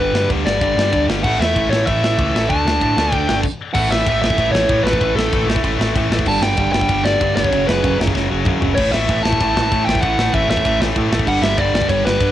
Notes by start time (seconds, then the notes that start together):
0.00 G1 G2 D3 G3 B4
0.13 G1 G2 D3 G3, snare
0.29 D2 G2 D3 G3, kick, ride
0.45 G1 G2 D3 G3 D5, snare
0.61 G1 G2 D3 G3, kick, ride
0.76 G2 D3 G3, snare
0.93 D2 G2 D3 G3, kick, ride
1.08 G1 G2 D3 G3, snare
1.23 A1 A2 E3 A3 F#5, kick, crash
1.39 E2 A2 E3 A3 E5, snare
1.55 A1 A2 E3 A3, kick, ride
1.70 A1 A2 E3 A3 C#5, snare
1.85 A1 A2 E3 A3 E5, kick, ride
2.02 A1 A2 E3 A3, snare
2.19 C#2 A2 E3 A3, kick, ride
2.35 A1 A2 E3 A3, snare
2.49 D2 D3 A3 D4 A5, kick, ride
2.65 D2 D3 A3 D4, snare
2.81 A2 D3 A3 D4, kick, ride
2.97 D2 D3 A3 D4, snare
3.12 D2 D3 A3 D4 G5, kick, ride
3.28 G1 D3 A3 D4, snare
3.43 kick, crash
3.74 A1 A2 E3 A3 F#5, kick, crash
3.90 A1 A2 E3 A3 E5, snare
4.07 A1 A2 E3 A3, kick, ride
4.21 A1 A2 E3 A3 E5, snare
4.30 kick
4.38 A1 A2 E3 A3, kick, ride
4.52 A1 A2 E3 A3 C#5, snare
4.69 A2 E3 A3, kick, ride
4.83 A1 A2 E3 A3 B4, snare
4.93 kick
5.00 A1 A2 E3 A3, kick, ride
5.15 A1 A2 E3 A3 A4, snare
5.32 A1 A2 E3 A3, kick, ride
5.47 A1 A2 E3 A3, snare
5.56 kick
5.63 A1 A2 E3 A3, kick, ride
5.79 A1 A2 E3 A3, snare
5.95 A2 E3 A3, kick, ride
6.10 A1 A2 E3 A3, snare
6.14 A2
6.19 kick
6.26 G1 G2 D3 G3 A5, kick, crash
6.41 G1 G2 D3 G3 G5, snare
6.57 G1 G2 D3 G3, kick, ride
6.72 G1 G2 D3 G3 G5, snare
6.81 kick
6.89 G1 G2 D3 G3, kick, ride
7.03 G1 G2 D3 G3 D5, snare
7.20 G2 D3 G3, kick, ride
7.36 G1 G2 D3 G3 C#5, snare
7.44 kick
7.51 F#1 F#2 C#3 F#3, kick, ride
7.67 F#1 F#2 C#3 F#3 B4, snare
7.83 F#1 F#2 C#3 F#3, kick, ride
7.98 F#1 F#2 C#3 F#3, snare
8.07 kick
8.14 F#1 F#2 C#3 F#3, kick, snare
8.31 F#1 F#2 C#3 F#3
8.45 F#2 C#3 F#3, kick, mid tom
8.61 F#1 F#2 C#3 F#3, floor tom
8.75 A1 A2 E3 A3 C#5, kick, crash
8.91 A1 A2 E3 A3 E5, snare
9.09 A1 A2 E3 A3, kick, ride
9.23 A1 A2 E3 A3 A5, snare
9.33 kick
9.40 A1 A2 E3 A3, kick, ride
9.56 A1 A2 E3 A3, snare
9.63 A5
9.72 A2 E3 A3, kick, ride
9.86 A1 E3 A3 G5, snare
9.90 A2
9.95 kick
10.02 A1 A2 E3 A3 F#5, kick, ride
10.18 A1 A2 E3 A3, snare
10.33 A1 A2 E3 A3 E5, kick, ride
10.49 A1 A2 E3 A3 E5, snare
10.57 kick
10.65 A1 A2 E3 A3, kick, ride
10.80 A1 A2 E3 A3, snare
10.96 A2 E3 A3, kick, ride
11.12 A1 A2 E3 A3, snare
11.19 kick
11.27 G1 G2 D3 G3 F#5, kick, crash
11.42 G1 G2 D3 G3 E5, snare
11.58 G1 G2 D3 G3 D5, kick, ride
11.74 G1 G2 D3 G3, snare
11.82 kick
11.89 G1 G2 D3 G3 C#5, kick, ride
12.05 G1 G2 D3 G3 B4, snare
12.20 G2 D3 G3, kick, ride